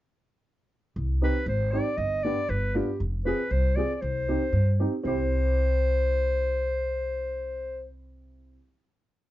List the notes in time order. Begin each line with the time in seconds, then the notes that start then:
0.96 C2
1.22 C4 D#4 G4 B4
1.46 G#1 C5
1.72 C4 D#4 G4 D5
1.97 G1 D#5
2.23 B3 D4 G4 D5
2.49 G1 B4
2.74 B3 D4 F4 G4
3.00 F1
3.25 C4 F4 G#4 B4
3.51 C2 C5
3.76 C4 F4 G#4 D5
3.95 D5
4.02 C2 C5
4.29 C4 D#4 G4
4.53 G2
4.80 C4 D#4 G4
5.03 C2 C4 E4 G4 C5